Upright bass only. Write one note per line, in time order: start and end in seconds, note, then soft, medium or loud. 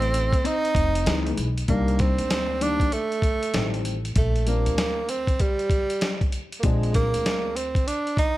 0.00 0.29 A1 medium
0.75 1.03 F1 medium
1.06 1.34 C#2 loud
1.37 1.65 B1 medium
1.69 2.15 C2 loud
2.19 2.77 D2 medium
3.54 4.12 A1 loud
4.16 4.63 A#1 loud
4.66 5.24 D2 medium
6.64 7.10 A#1 loud
7.14 7.72 D2 medium